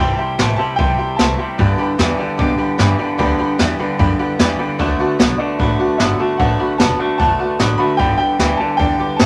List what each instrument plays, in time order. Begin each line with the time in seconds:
Already playing: upright piano G5
0.00 upright bass G1, steel-string acoustic guitar C3 E3 A3 E4 G4, clean electric guitar G3, honky-tonk piano E5 G5 C6
0.18 steel-string acoustic guitar A3 E4 G4, honky-tonk piano E5 G5 C6, muted upright bass stroke
0.38 upright bass A1, steel-string acoustic guitar C3 E3 A3 E4 G4, honky-tonk piano E5 G5 C6, snare, open hi-hat
0.56 clean electric guitar C3 G3, steel-string acoustic guitar E4 G4, honky-tonk piano E5 G5 C6, upright piano A5, muted upright bass stroke
0.60 steel-string acoustic guitar A3
0.76 upright bass B1, clean electric guitar C3 G3, steel-string acoustic guitar E3 A3 E4, honky-tonk piano E5 G5 C6, upright piano G5, kick, open hi-hat
0.81 steel-string acoustic guitar G4
0.98 steel-string acoustic guitar A3 E4 G4, honky-tonk piano E5 G5 C6, muted upright bass stroke
1.16 upright bass C2, steel-string acoustic guitar C3 E3 A3 E4, honky-tonk piano E5 G5 C6, upright piano A5, snare
1.21 steel-string acoustic guitar G4
1.38 clean electric guitar C3 G3, steel-string acoustic guitar A3 E4 G4, honky-tonk piano E5 G5 C6
1.58 steel-string acoustic guitar G2 D3 E3 G3 B3 G4, upright bass G2, honky-tonk piano D5 G5 B5, kick, open hi-hat
1.78 steel-string acoustic guitar E3 G3 B3 G4, honky-tonk piano D5 G5 B5, muted upright bass stroke
1.98 upright bass E2, steel-string acoustic guitar G2 D3 E3 G3 B3 G4, honky-tonk piano D5 G5 B5, snare, open hi-hat
2.18 clean electric guitar G2 D3, steel-string acoustic guitar E3 G3 B3 G4, honky-tonk piano D5 G5 A5, muted upright bass stroke
2.37 clean electric guitar G2 D3, upright bass B2, steel-string acoustic guitar E3 G3 B3 G4, honky-tonk piano D5 G5 D6, kick, open hi-hat
2.58 steel-string acoustic guitar E3 G3 B3 G4, honky-tonk piano D5 G5 B5, muted upright bass stroke
2.78 steel-string acoustic guitar G2 D3 E3 G3 B3 G4, upright bass G2, honky-tonk piano D5 G5 B5, snare, open hi-hat
2.98 clean electric guitar G2 D3, steel-string acoustic guitar E3 G3 B3 G4, honky-tonk piano D5 G5 B5
3.18 upright bass D2, steel-string acoustic guitar G2 D3 E3 G3 B3 G4, honky-tonk piano D5 G5 B5, kick, open hi-hat
3.38 steel-string acoustic guitar E3 G3 B3 G4, honky-tonk piano D5 G5 B5, muted upright bass stroke
3.58 upright bass E2, steel-string acoustic guitar G2 D3 E3 G3 B3 G4, honky-tonk piano D5 G5 A5, snare, open hi-hat
3.79 clean electric guitar G2 D3, steel-string acoustic guitar E3 G3 B3 G4, honky-tonk piano D5 G5 B5
3.99 upright bass F#2, clean electric guitar G2 D3, steel-string acoustic guitar E3 G3 B3 G4, honky-tonk piano D5 G5 B5, kick, open hi-hat
4.19 steel-string acoustic guitar E3 G3 B3 G4, honky-tonk piano D5 F#5 G5 B5, muted upright bass stroke
4.39 upright bass E2, steel-string acoustic guitar G2 D3 E3 G3 B3 G4, honky-tonk piano D5 G5 B5, snare, open hi-hat
4.58 clean electric guitar G2 D3, steel-string acoustic guitar E3 G3 B3 G4, honky-tonk piano D5 G5 B5, muted upright bass stroke
4.79 upright bass D2, steel-string acoustic guitar D3 F#3 A3 B3 F#4, honky-tonk piano D5 F#5 A5, kick, open hi-hat
4.99 steel-string acoustic guitar A3 B3 F#4, honky-tonk piano D5 F#5 A5, muted upright bass stroke
5.19 upright bass B1, steel-string acoustic guitar D3 F#3 A3 B3 F#4, honky-tonk piano D5 F#5 A5, snare
5.38 clean electric guitar D3, steel-string acoustic guitar A3 B3 F#4, upright piano D5, honky-tonk piano D5 F#5 A5, muted upright bass stroke
5.59 upright bass A1, clean electric guitar D3, steel-string acoustic guitar F#3 A3 B3 F#4, honky-tonk piano D5 F#5 B5, kick, open hi-hat
5.79 steel-string acoustic guitar A3 B3 F#4, honky-tonk piano D5 F#5 A5, muted upright bass stroke
5.98 upright bass G1, steel-string acoustic guitar D3 F#3 A3 B3 F#4, honky-tonk piano D5 F#5 A5, upright piano E5, snare, open hi-hat
6.19 clean electric guitar D3, steel-string acoustic guitar A3 B3 F#4, honky-tonk piano D5 F#5 A5
6.37 upright bass A1, steel-string acoustic guitar D3 F#3 A3 B3 F#4, honky-tonk piano D5 F#5 A5, upright piano F#5, kick, open hi-hat
6.59 steel-string acoustic guitar A3 B3 F#4, honky-tonk piano D5 F#5 B5, muted upright bass stroke
6.78 upright bass E1, steel-string acoustic guitar D3 F#3 A3 B3 F#4, honky-tonk piano D5 F#5 A5, upright piano A5, snare, open hi-hat
6.99 clean electric guitar D3, steel-string acoustic guitar A3 B3 F#4, honky-tonk piano D5 F#5 A5, muted upright bass stroke
7.18 upright bass F#1, clean electric guitar D3, steel-string acoustic guitar F#3 A3 B3 F#4, honky-tonk piano D5 F#5 A5, upright piano A5, kick, open hi-hat
7.39 steel-string acoustic guitar A3 B3 F#4, honky-tonk piano D5 F#5 A5, muted upright bass stroke
7.59 upright bass A1, steel-string acoustic guitar D3 F#3 A3 B3 F#4, honky-tonk piano D5 F#5 B5, snare, open hi-hat
7.78 clean electric guitar D3, steel-string acoustic guitar A3 B3 F#4, honky-tonk piano D5 F#5 A5, upright piano B5, muted upright bass stroke
7.97 upright bass G1, steel-string acoustic guitar G2 D3 E3 G3 B3 G4, honky-tonk piano D5 G5 B5, upright piano G5, kick, open hi-hat
8.18 steel-string acoustic guitar G3 B3 G4, honky-tonk piano D5 G5 B5, upright piano G5, muted upright bass stroke
8.22 steel-string acoustic guitar E3
8.39 upright bass D2, steel-string acoustic guitar G2 D3 E3 G3 B3 G4, honky-tonk piano D5 G5 B5, snare, open hi-hat
8.57 clean electric guitar G2 D3, steel-string acoustic guitar G3 B3 G4, honky-tonk piano D5 G5 A5, upright piano A5, muted upright bass stroke
8.62 steel-string acoustic guitar E3
8.70 upright piano A5
8.77 upright bass E2, clean electric guitar G2 D3, steel-string acoustic guitar E3 G3, honky-tonk piano D5 G5 A5, upright piano G5, kick, open hi-hat
8.81 steel-string acoustic guitar B3 G4
8.99 steel-string acoustic guitar E3 G3 B3 G4, honky-tonk piano D5 G5 D6, muted upright bass stroke
9.17 steel-string acoustic guitar G2 D3 E3 G3 B3, upright bass G2, honky-tonk piano D5 G5 B5, upright piano A5, snare
9.21 steel-string acoustic guitar G4